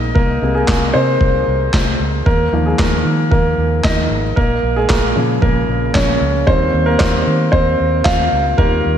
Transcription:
0.00 0.11 A#1 medium
0.00 0.42 C3 soft
0.00 0.42 G#3 medium
0.00 0.16 A#3 medium
0.00 2.28 D#4 medium
0.00 0.55 G#4 medium
0.00 0.15 A#4 medium
0.00 2.28 D#5 medium
0.15 0.37 C2 medium
0.15 0.42 A#3 medium
0.15 0.52 A#4 medium
0.15 kick loud
0.42 0.63 C2 medium
0.42 1.17 C3 soft
0.42 0.55 G#3 soft
0.42 1.17 A#3 medium
0.55 0.68 G#3 medium
0.55 0.66 G#4 medium
0.67 0.90 C2 medium
0.67 0.93 G#3 soft
0.67 0.95 G#4 medium
0.67 kick medium
0.67 snare medium
0.67 clap medium
0.94 1.16 C3 medium
0.94 1.96 C4 soft
0.94 1.95 C5 medium
1.21 1.42 C2 medium
1.21 kick medium
1.47 1.69 C2 medium
1.73 1.95 C2 medium
1.73 kick medium
1.73 snare medium
1.73 clap medium
1.99 2.21 C#2 medium
2.26 2.48 D#2 medium
2.26 2.52 A#3 medium
2.26 2.67 A#4 medium
2.26 kick loud
2.52 2.74 D#2 medium
2.52 2.88 D#3 soft
2.52 2.88 F3 soft
2.52 2.79 A#3 medium
2.66 2.79 G#3 medium
2.66 2.78 G#4 medium
2.79 3.00 D#2 medium
2.79 3.29 A#3 medium
2.79 3.30 A#4 medium
2.79 kick medium
2.79 snare medium
2.79 clap medium
3.05 3.33 D#3 medium
3.31 3.53 D#2 medium
3.31 3.81 A#3 medium
3.31 3.85 A#4 medium
3.31 kick medium
3.58 3.79 D#2 medium
3.84 4.06 D#2 medium
3.84 4.21 D#4 medium
3.84 4.21 D#5 medium
3.84 kick loud
3.84 snare loud
3.84 clap medium
4.09 4.31 G#1 medium
4.36 4.59 A#1 medium
4.36 4.74 A#3 medium
4.36 4.77 A#4 medium
4.36 kick loud
4.63 4.84 A#1 medium
4.76 4.90 G#3 medium
4.76 4.90 G#4 medium
4.89 5.11 A#1 medium
4.89 5.16 A#3 medium
4.89 5.40 A#4 medium
4.89 kick medium
4.89 snare medium
4.89 clap medium
5.16 5.37 A#2 medium
5.16 5.91 C#3 soft
5.16 5.91 F3 soft
5.16 5.43 A#3 soft
5.42 5.64 A#1 medium
5.42 5.92 A#3 medium
5.42 5.96 A#4 medium
5.42 kick medium
5.68 5.90 A#1 medium
5.94 6.17 A#1 medium
5.94 6.32 C#4 medium
5.94 6.31 C#5 medium
5.94 kick loud
5.94 snare medium
5.94 clap medium
6.21 6.43 C#2 medium
6.47 6.69 D#2 medium
6.47 6.83 D#3 soft
6.47 6.83 G3 soft
6.47 6.83 A#3 soft
6.47 6.85 C4 medium
6.47 6.88 C5 medium
6.47 kick loud
6.74 6.95 D#2 medium
6.86 7.00 A#3 medium
6.86 7.00 A#4 medium
6.99 7.22 D#2 medium
6.99 7.50 C4 medium
6.99 7.50 C5 medium
6.99 kick loud
6.99 snare loud
6.99 clap medium
7.27 7.48 D#3 medium
7.52 7.74 D#2 medium
7.52 8.02 C4 medium
7.52 8.07 C5 medium
7.52 kick medium
7.80 8.01 D#2 medium
8.04 8.27 D#2 medium
8.04 8.43 F4 medium
8.04 8.42 F5 medium
8.04 kick loud
8.04 snare medium
8.04 clap medium
8.32 8.54 C#2 medium
8.58 8.80 D#2 medium
8.58 8.93 D#3 soft
8.58 8.94 G3 soft
8.58 8.96 A#3 medium
8.58 8.98 A#4 medium
8.58 kick loud
8.85 8.98 D#2 medium

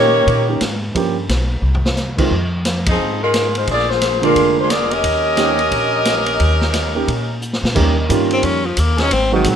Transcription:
0.00 0.24 A#2 medium
0.00 0.44 D#3 medium
0.00 0.44 A#3 medium
0.00 0.83 A#3 medium
0.00 0.44 C#4 medium
0.00 0.83 D#4 medium
0.00 0.45 G4 medium
0.00 0.83 G4 medium
0.00 0.83 C#5 loud
0.27 0.59 A#2 medium
0.27 kick soft
0.27 ride soft
0.48 0.60 D#3 medium
0.48 0.60 A#3 soft
0.48 0.60 C#4 soft
0.48 0.61 G4 medium
0.61 0.93 G#2 medium
0.61 snare medium
0.61 hi-hat pedal soft
0.61 ride medium
0.95 1.27 G2 medium
0.95 1.14 F3 medium
0.95 1.15 A#3 medium
0.95 1.15 C#4 medium
0.95 1.15 G4 medium
0.95 kick soft
0.95 ride medium
1.29 1.61 B1 medium
1.29 snare medium
1.29 hi-hat pedal soft
1.29 ride medium
1.62 2.27 C2 medium
1.75 floor tom medium
1.85 snare medium
1.97 snare soft
1.97 hi-hat pedal soft
2.18 2.30 D#3 medium
2.18 2.30 G#3 medium
2.18 2.30 C4 medium
2.18 2.30 F4 medium
2.18 kick medium
2.18 crash medium
2.31 2.96 F2 medium
2.31 kick soft
2.65 snare medium
2.65 hi-hat pedal medium
2.65 ride medium
2.86 3.20 F3 medium
2.86 3.20 C4 medium
2.86 3.20 D#4 medium
2.86 3.20 G#4 medium
2.86 kick medium
2.86 ride medium
2.99 3.64 G#2 medium
3.23 3.54 G#3 medium
3.23 3.54 D#4 medium
3.23 3.54 F4 medium
3.23 3.53 A#4 medium
3.34 snare medium
3.34 hi-hat pedal medium
3.34 ride medium
3.55 3.68 G#3 medium
3.55 3.69 D#4 medium
3.55 3.69 F4 medium
3.55 3.68 C5 medium
3.55 ride soft
3.67 4.32 A#1 medium
3.67 kick soft
3.67 ride medium
3.71 3.89 A#3 medium
3.71 3.89 F4 medium
3.71 3.89 G#4 medium
3.71 3.90 D5 loud
3.79 snare soft
3.90 4.24 A#3 medium
3.90 4.24 F4 medium
3.90 4.24 G#4 medium
3.90 4.23 C5 medium
3.90 snare soft
4.01 snare medium
4.01 hi-hat pedal soft
4.01 ride medium
4.22 4.66 D3 medium
4.22 4.67 G#3 medium
4.22 4.56 G#3 medium
4.22 4.67 A#3 medium
4.22 4.56 D4 medium
4.22 4.67 F4 medium
4.22 4.56 F4 medium
4.22 4.56 A#4 loud
4.22 ride soft
4.36 5.00 F1 medium
4.36 kick soft
4.36 ride medium
4.59 4.71 G#3 medium
4.59 4.71 D4 medium
4.59 4.70 F4 medium
4.59 4.71 C5 medium
4.70 4.91 A#3 medium
4.70 4.92 F4 medium
4.70 4.91 G#4 medium
4.70 4.92 D5 medium
4.70 snare medium
4.70 hi-hat pedal medium
4.70 ride medium
4.91 7.42 C#4 medium
4.91 7.41 G4 medium
4.91 7.42 A#4 medium
4.91 7.42 D#5 loud
4.91 ride soft
5.04 5.68 D#2 medium
5.04 kick soft
5.04 ride medium
5.36 5.56 D#3 medium
5.36 5.56 A#3 medium
5.36 5.57 C#4 medium
5.36 5.57 G4 medium
5.36 snare medium
5.36 hi-hat pedal medium
5.36 ride medium
5.59 ride soft
5.71 6.36 A#1 medium
5.71 kick soft
5.71 ride medium
6.05 snare medium
6.05 hi-hat pedal medium
6.05 ride medium
6.26 ride soft
6.40 7.04 D#2 medium
6.40 kick soft
6.40 ride medium
6.61 snare medium
6.74 snare medium
6.74 hi-hat pedal soft
6.74 ride medium
6.95 7.06 D#3 medium
6.95 7.07 A#3 medium
6.95 7.07 C#4 medium
6.95 7.07 G4 medium
7.08 7.59 A#2 medium
7.08 kick soft
7.08 ride medium
7.42 hi-hat pedal soft
7.53 snare medium
7.63 7.75 A#2 medium
7.63 snare medium
7.74 8.09 D#2 medium
7.74 7.94 D#3 medium
7.74 7.94 G3 medium
7.74 8.26 G3 medium
7.74 7.95 A#3 medium
7.74 7.95 C#4 medium
7.74 8.27 C#4 medium
7.74 8.26 D#4 medium
7.74 7.95 G4 medium
7.74 8.26 A#4 medium
7.74 kick medium
7.74 crash medium
8.09 8.42 G2 medium
8.09 8.60 D#3 medium
8.09 8.60 G3 medium
8.09 8.61 A#3 medium
8.09 8.61 C#4 medium
8.09 8.61 F4 medium
8.09 kick soft
8.09 hi-hat pedal medium
8.09 ride medium
8.31 8.46 C4 medium
8.31 ride soft
8.43 8.76 F2 medium
8.43 8.67 C#4 medium
8.43 kick soft
8.43 ride medium
8.66 8.81 F3 medium
8.77 9.10 D#2 medium
8.77 9.02 A#3 medium
8.77 kick soft
8.77 hi-hat pedal medium
8.77 ride medium
8.97 9.06 F#3 medium
8.97 9.06 C4 medium
8.97 9.14 C#4 medium
8.97 9.06 D#4 medium
8.97 9.06 G#4 medium
8.97 snare medium
8.97 ride soft
9.11 9.44 G#1 medium
9.11 9.33 C4 medium
9.11 kick soft
9.11 ride medium
9.32 9.56 D#3 medium
9.32 9.50 D#3 medium
9.32 9.56 F#3 medium
9.32 9.56 G#3 medium
9.32 9.56 C4 medium
9.32 9.56 F#4 medium
9.44 9.56 A#1 medium
9.44 kick soft
9.44 hi-hat pedal soft
9.44 ride medium
9.49 9.56 F#3 medium

